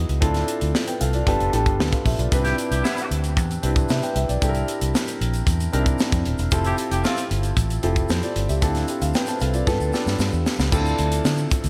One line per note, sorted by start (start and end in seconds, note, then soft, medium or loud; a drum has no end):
0.00 0.24 B3 medium
0.00 0.24 D#4 medium
0.00 0.21 E4 medium
0.00 0.24 F#4 medium
0.00 0.24 G#4 medium
0.09 0.19 C#2 medium
0.09 closed hi-hat soft
0.21 0.42 D2 loud
0.21 0.98 C4 medium
0.21 0.98 D4 medium
0.21 0.74 E4 medium
0.21 0.74 F4 medium
0.21 0.74 A4 medium
0.21 kick medium
0.21 closed hi-hat medium
0.34 snare soft
0.34 closed hi-hat soft
0.48 closed hi-hat medium
0.61 0.72 D2 medium
0.61 closed hi-hat medium
0.75 snare medium
0.88 1.00 B4 soft
0.88 1.00 G5 medium
0.88 closed hi-hat medium
1.01 1.21 C2 medium
1.01 1.14 A4 medium
1.01 1.13 F5 medium
1.01 closed hi-hat medium
1.13 1.26 F4 medium
1.13 1.39 D5 medium
1.13 closed hi-hat soft
1.27 1.37 G1 loud
1.27 1.48 B3 medium
1.27 1.48 D4 medium
1.27 1.48 F4 medium
1.27 1.48 G4 medium
1.27 1.49 A4 medium
1.27 kick medium
1.27 closed hi-hat medium
1.40 1.50 F1 medium
1.40 closed hi-hat soft
1.53 1.66 A1 medium
1.53 2.11 B3 medium
1.53 2.11 D4 medium
1.53 1.79 F4 medium
1.53 1.80 G4 medium
1.53 1.80 A4 medium
1.53 closed hi-hat medium
1.66 1.76 G1 medium
1.66 kick medium
1.66 closed hi-hat soft
1.80 1.90 D2 medium
1.80 1.92 F4 soft
1.80 1.92 D5 medium
1.80 snare loud
1.93 2.05 A4 medium
1.93 2.05 F5 medium
1.93 kick medium
1.93 closed hi-hat medium
2.05 2.16 A#1 medium
2.05 2.18 G4 soft
2.05 2.18 E5 medium
2.05 kick medium
2.05 open hi-hat medium
2.19 2.29 B1 medium
2.19 2.44 F4 medium
2.19 2.44 D5 medium
2.19 closed hi-hat soft
2.31 2.52 C2 loud
2.31 3.08 C4 medium
2.31 3.08 D4 medium
2.31 2.38 D#4 medium
2.31 3.09 G4 medium
2.31 3.09 B4 medium
2.31 kick loud
2.31 closed hi-hat medium
2.31 shaker medium
2.38 3.12 E4 medium
2.45 2.55 D4 medium
2.45 2.56 E4 medium
2.45 2.55 G4 medium
2.45 snare soft
2.45 closed hi-hat soft
2.45 shaker soft
2.58 closed hi-hat medium
2.58 shaker soft
2.71 2.81 C2 medium
2.71 2.82 D4 medium
2.71 2.82 E4 medium
2.71 2.82 G4 medium
2.71 closed hi-hat medium
2.71 shaker soft
2.84 3.05 G3 medium
2.84 3.05 B3 medium
2.84 3.05 E4 medium
2.84 snare medium
2.84 shaker medium
2.97 closed hi-hat medium
2.97 shaker medium
3.11 3.37 D2 medium
3.11 closed hi-hat medium
3.24 closed hi-hat soft
3.24 shaker soft
3.37 3.57 E2 medium
3.37 kick medium
3.37 closed hi-hat medium
3.37 shaker medium
3.51 closed hi-hat soft
3.51 shaker soft
3.62 3.84 C2 medium
3.62 4.20 C4 medium
3.62 4.20 D4 medium
3.62 4.20 E4 medium
3.62 3.89 G4 medium
3.62 3.90 B4 medium
3.62 closed hi-hat medium
3.76 kick medium
3.76 closed hi-hat soft
3.76 shaker soft
3.89 4.00 C3 medium
3.89 4.02 G4 soft
3.89 4.02 E5 medium
3.89 snare loud
3.89 shaker medium
4.02 4.16 B4 medium
4.02 4.15 G5 medium
4.02 closed hi-hat medium
4.02 shaker soft
4.16 4.26 C2 medium
4.16 4.29 G4 soft
4.16 4.29 E5 medium
4.16 closed hi-hat medium
4.29 4.39 B1 medium
4.29 4.54 D5 medium
4.29 closed hi-hat soft
4.29 shaker soft
4.42 4.62 C2 loud
4.42 5.18 C4 medium
4.42 5.18 D4 medium
4.42 5.19 E4 medium
4.42 5.19 G4 medium
4.42 4.49 A4 medium
4.42 kick loud
4.42 closed hi-hat medium
4.42 shaker medium
4.49 5.22 A#4 medium
4.55 closed hi-hat soft
4.55 shaker soft
4.68 closed hi-hat medium
4.68 shaker soft
4.81 4.92 C2 medium
4.81 closed hi-hat medium
4.81 shaker soft
4.95 snare loud
4.95 shaker medium
5.08 closed hi-hat medium
5.08 shaker soft
5.21 5.41 A#1 medium
5.21 closed hi-hat medium
5.33 closed hi-hat soft
5.33 shaker soft
5.47 5.67 E2 medium
5.47 kick medium
5.47 closed hi-hat medium
5.47 shaker medium
5.60 closed hi-hat soft
5.60 shaker soft
5.72 5.94 C2 loud
5.72 6.30 C4 medium
5.72 6.30 D4 medium
5.72 5.80 D#4 medium
5.72 6.31 G4 medium
5.72 6.31 A#4 medium
5.72 closed hi-hat medium
5.79 6.34 E4 medium
5.86 kick medium
5.86 closed hi-hat soft
5.86 shaker soft
5.99 snare loud
5.99 shaker medium
6.12 6.23 F2 medium
6.12 kick medium
6.12 closed hi-hat medium
6.12 shaker soft
6.25 6.36 D#1 medium
6.25 closed hi-hat medium
6.38 6.49 E1 medium
6.38 closed hi-hat soft
6.38 shaker soft
6.51 6.72 F1 loud
6.51 7.28 C4 medium
6.51 7.28 E4 medium
6.51 7.29 F4 medium
6.51 7.29 G4 medium
6.51 7.29 A4 medium
6.51 kick loud
6.51 closed hi-hat medium
6.51 shaker medium
6.64 6.76 C4 medium
6.64 6.76 E4 medium
6.64 6.75 G4 medium
6.64 closed hi-hat soft
6.64 shaker soft
6.78 closed hi-hat medium
6.78 shaker soft
6.91 7.02 F1 medium
6.91 7.02 C4 medium
6.91 7.01 E4 medium
6.91 7.01 G4 medium
6.91 closed hi-hat medium
6.91 shaker soft
7.03 7.25 A3 medium
7.03 7.25 C4 medium
7.03 7.25 F4 medium
7.03 snare loud
7.03 shaker medium
7.17 closed hi-hat medium
7.17 shaker soft
7.31 7.51 G1 medium
7.31 closed hi-hat medium
7.43 closed hi-hat soft
7.43 shaker soft
7.57 7.77 A1 medium
7.57 kick medium
7.57 closed hi-hat medium
7.57 shaker medium
7.70 closed hi-hat soft
7.70 shaker soft
7.83 8.04 F1 medium
7.83 8.41 C4 medium
7.83 8.09 E4 medium
7.83 8.10 F4 medium
7.83 8.10 G4 medium
7.83 8.10 A4 medium
7.83 closed hi-hat medium
7.96 kick medium
7.96 closed hi-hat soft
7.96 shaker soft
8.09 8.20 F2 medium
8.09 8.22 E4 soft
8.09 8.22 C5 medium
8.09 snare loud
8.09 shaker medium
8.22 8.48 F4 medium
8.22 8.48 D5 medium
8.22 closed hi-hat soft
8.22 shaker soft
8.36 8.46 G1 medium
8.36 closed hi-hat medium
8.49 8.59 C#2 medium
8.49 8.74 G4 medium
8.49 8.74 E5 medium
8.49 closed hi-hat soft
8.49 shaker medium
8.61 8.82 D2 loud
8.61 9.38 C4 medium
8.61 9.39 D4 medium
8.61 8.88 E4 medium
8.61 8.89 F4 medium
8.61 8.89 A4 medium
8.61 kick loud
8.61 closed hi-hat medium
8.61 shaker medium
8.75 snare soft
8.75 closed hi-hat soft
8.75 shaker soft
8.88 9.01 G4 soft
8.88 9.01 E5 medium
8.88 closed hi-hat medium
8.88 shaker soft
9.02 9.12 D2 medium
9.02 9.14 A4 soft
9.02 9.14 F5 medium
9.02 closed hi-hat medium
9.02 shaker medium
9.14 9.27 B4 medium
9.14 9.27 G5 medium
9.14 snare loud
9.14 shaker medium
9.26 9.41 C5 medium
9.26 9.41 A5 medium
9.26 closed hi-hat medium
9.26 shaker medium
9.40 9.61 C2 medium
9.40 9.54 A4 medium
9.40 9.54 F5 medium
9.40 closed hi-hat medium
9.40 shaker soft
9.54 9.66 F4 soft
9.54 9.79 D5 medium
9.54 closed hi-hat soft
9.54 shaker soft
9.66 9.77 G2 medium
9.66 9.88 B3 medium
9.66 9.88 D4 medium
9.66 9.88 F4 medium
9.66 9.88 G4 medium
9.66 9.89 A4 medium
9.66 kick medium
9.66 snare soft
9.66 shaker medium
9.80 9.90 D2 medium
9.80 shaker soft
9.93 10.51 B3 medium
9.93 10.51 D4 medium
9.93 10.51 F4 medium
9.93 10.51 G4 medium
9.93 10.51 A4 medium
9.93 snare medium
9.93 shaker soft
10.06 10.17 G2 medium
10.06 snare medium
10.06 shaker soft
10.19 10.29 G2 medium
10.19 snare medium
10.19 shaker medium
10.33 10.43 E2 medium
10.33 shaker soft
10.46 snare medium
10.46 shaker medium
10.59 10.69 C#2 medium
10.59 snare medium
10.59 shaker soft
10.72 10.92 D2 loud
10.72 11.49 C4 medium
10.72 11.49 D4 medium
10.72 11.49 E4 medium
10.72 11.49 F4 medium
10.72 11.49 A4 medium
10.72 kick loud
10.72 crash medium
10.72 shaker medium
10.86 shaker soft
10.98 11.19 D2 loud
10.98 closed hi-hat medium
10.98 shaker soft
11.12 closed hi-hat medium
11.12 shaker soft
11.25 11.45 D3 loud
11.25 snare loud
11.25 shaker medium
11.37 shaker soft
11.51 kick medium
11.51 closed hi-hat medium
11.51 shaker soft
11.64 11.69 D2 loud
11.64 closed hi-hat soft
11.64 shaker soft